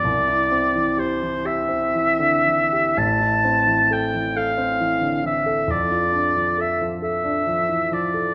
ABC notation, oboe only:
X:1
M:6/8
L:1/8
Q:3/8=44
K:C
V:1 name="Oboe"
d2 c e3 | [K:Am] a2 g f2 e | d2 e e2 d |]